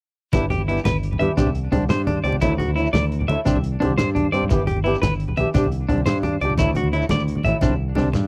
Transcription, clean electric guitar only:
0.33 E4
0.50 G4
0.68 E4
0.85 B4
1.19 E5
1.37 D4
1.72 D4
1.90 C5
2.07 D4
2.24 D5
2.41 E4
2.58 F#4
2.76 E4
2.93 D5
3.28 E5
3.46 D4
3.80 D4
3.98 C5
4.15 D4
4.32 D5
4.49 muted clean electric guitar stroke
4.67 G4
4.84 E4
5.02 B4
5.37 E5
5.54 D4
5.89 D4
6.06 C5
6.23 D4
6.41 D5
6.59 E4
6.77 F#4
6.93 E4
7.11 D5
7.45 E5
7.62 D4
7.96 D4
8.13 muted clean electric guitar stroke

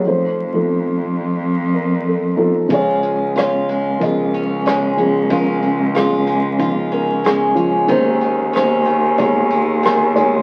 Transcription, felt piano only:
0.05 F1 F2 F3 D#4 A4 C5
0.54 F3 D#4 A4
1.74 A#4
2.07 A4
2.36 F3 D#4 A4
2.68 C#2 C#3 F3 C#4 G#4
2.73 F4 C#5
3.39 C#5
3.99 F3 C#4 A#4 D#5
4.03 G#4
4.67 C#5
4.97 F3 C#4 G#4
5.28 C#2 C#3 F3 C#4 F4 G#4 A#4
5.95 F4 G#4
6.58 F3 C#4 D#4
6.93 A#4
7.25 G#4
7.55 F3 C#4 F4
7.87 D#2 D#3 G#3 C#4 D#4 C5
8.55 C5
9.18 G#3 D#4 G#4 C#5
9.86 A#4
10.16 G#3 D#4 C#5

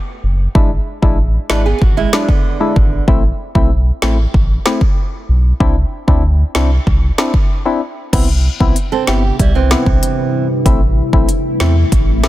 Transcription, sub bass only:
0.24 F#1
0.55 G#1
1.03 A1
1.50 G#1
1.82 G#1
2.76 G#1
3.08 A1
3.55 B1
4.03 A1
4.34 A1
5.29 B1
5.60 C2
6.08 D2
6.55 C2
6.87 C2
8.13 C2
8.61 B1
9.08 G1
9.40 C2
9.86 B1
10.66 A1
11.13 A1
11.60 E2
11.92 A1

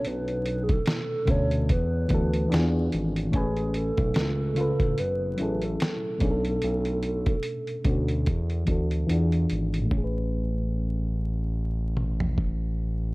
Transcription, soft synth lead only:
0.07 B4
0.63 G#4
0.71 A4
1.30 C#5
1.71 B4
3.35 G#4
3.76 A4
4.99 B4
5.64 A4
5.82 A4

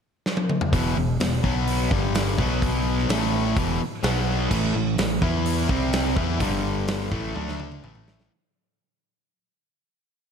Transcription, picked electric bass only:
0.72 E1
0.96 E1
1.20 E1
1.44 B1
1.91 G1
2.39 B1
3.09 A1
3.56 E1
4.03 B1
4.51 A1
4.75 A1
4.98 A1
5.22 E2
5.69 C2
6.16 E2
6.40 G1
7.12 A1
7.35 D2
7.83 A1

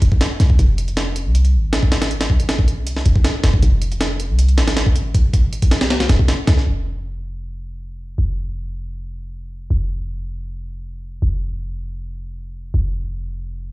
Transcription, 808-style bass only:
0.02 F1
0.40 C2
0.59 F1
1.26 C2
1.54 G#1
2.78 C2
3.06 F1
3.44 F1
3.63 F1
4.29 C2
4.58 G#1
5.82 C2
6.10 F1
6.48 C2
6.67 F1
8.18 F1
9.70 F1
11.22 F1
12.74 F1

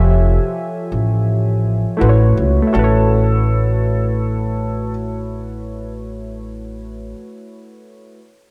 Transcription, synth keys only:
Already playing: F3 F4 G4 A4 C#5 E5 G#5
1.97 A3 E4 F#4
2.01 B4 C5
2.09 C#5
2.62 A3
2.67 E4
2.73 F#4
2.79 B4
2.84 C#5

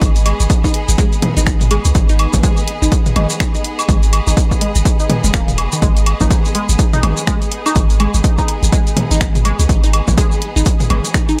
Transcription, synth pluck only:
0.26 G#3
0.64 D#4
0.98 G#3
1.37 D#4
1.71 G#3
2.09 D#4
2.43 G#3
2.82 D#4
3.16 G#3
3.55 D#4
3.89 G#3
4.27 D#4
4.61 G#3
5.00 D#4
5.24 G#3
5.34 A#3
5.72 D#3
5.82 G#3
6.21 D#4
6.55 G#3
6.93 D#4
7.27 G#3
7.66 D#4
8.00 G#3
8.38 D#4
8.73 G#3
9.11 D#4
9.45 G#3
9.84 D#4
10.18 G#3
10.56 D#4
10.90 G#3
11.29 D#4

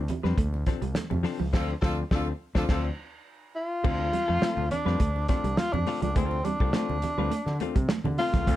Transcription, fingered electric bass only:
0.24 F2
0.37 D2
0.82 C2
0.96 muted fingered electric bass stroke
1.11 F2
1.40 C#2
1.53 D2
1.82 D2
2.11 D2
2.55 D2
2.69 D2
3.85 D2
4.29 F2
4.43 muted fingered electric bass stroke
4.57 D2
4.86 F2
5.00 D2
5.44 C2
5.58 muted fingered electric bass stroke
5.73 F2
6.02 C#2
6.16 D2
6.60 C2
6.74 muted fingered electric bass stroke
6.89 D2
7.18 D2
7.31 muted fingered electric bass stroke
7.46 D3
7.76 C3
8.04 D3
8.34 C#2
8.47 D2

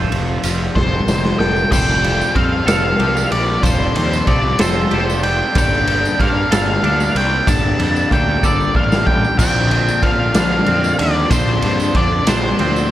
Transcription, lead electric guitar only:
0.75 C5
1.39 G5
1.72 G5
2.36 F5
2.68 F5
3.32 D5
3.63 C5
3.97 C5
4.28 D5
4.60 C5
5.23 G5
5.58 G5
6.20 F5
6.53 F5
7.17 G5
7.49 A5
8.13 G5
8.44 D5
8.76 F5
9.06 G5
9.39 G5
10.03 F5
10.36 F5
10.99 D5
11.30 C5
11.96 D5
12.28 C5

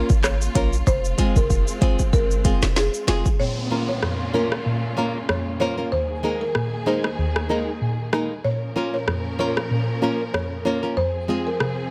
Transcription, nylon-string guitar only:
Already playing: A#3 C#4 F4 A#4
0.55 A#3 C#4 F4 A#4
1.18 G#3 C4 F4 G#4
1.81 G#3 C4 F4 G#4
2.44 G#3 C4 F4 G#4
3.07 G#3 C4 F4 G#4
3.70 A#3 C#4 F4 A#4
4.34 A#3 C#4 F4 A#4
4.97 A#3 C#4 F4 A#4
5.60 A#3 C#4 F4 A#4
5.78 A#3 C#4 F4 A#4
6.23 G#3 A#3 D#4 A#4
6.86 G#3 A#3 D#4 A#4
7.49 G#3 A#3 D#4 A#4
8.13 G#3 A#3 D#4 A#4
8.76 A#3 C#4 F4 A#4
9.39 A#3 C#4 F4 A#4
10.02 A#3 C#4 F4 A#4
10.65 A#3 C#4 F4 A#4
10.83 A#3 C#4 F4 A#4
11.28 G#3 C4 F4 G#4

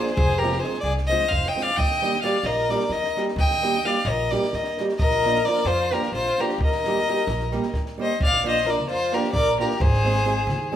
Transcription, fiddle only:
Already playing: C5
0.13 C5
0.38 A#4
0.59 C5
0.80 D5
1.07 D#5
1.29 F5
1.48 G5
1.62 F5
1.77 G5
2.22 F5
2.45 D#5
2.70 D5
2.92 D#5
3.39 G5
3.85 F5
4.06 D#5
4.31 D5
4.55 D#5
4.98 D#5
5.45 D5
5.67 C5
5.93 A#4
6.14 C5
6.40 A#4
6.63 D#5
8.02 D#5
8.24 F5
8.48 D#5
8.70 D5
8.89 C5
9.14 A#4
9.33 D5
9.60 A#4
9.81 C5

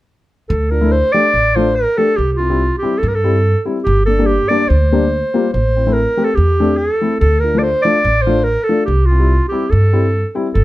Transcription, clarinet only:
0.49 A4
0.70 A#4
0.92 C5
1.12 D5
1.55 C5
1.75 A#4
1.97 A4
2.16 G4
2.33 F4 G4
2.78 G4
2.98 A4
3.08 A#4
3.15 A4
3.84 G4
4.06 A4
4.26 G4
4.49 D5
4.69 C5
5.53 C5
5.93 A#4
6.24 A4
6.35 G4
6.77 G#4
6.94 A4
7.20 A4
7.40 A#4
7.59 C5 D5
7.82 D5
8.22 C5
8.44 A#4
8.63 A4
8.85 G4
9.06 F4
9.48 G4
9.70 A4
10.54 A4

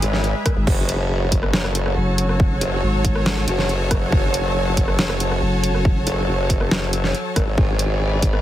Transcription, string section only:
Already playing: G#4 D5 B5
0.67 F#4
0.91 C#5 A5
7.58 G#4
7.69 D5
7.96 B5

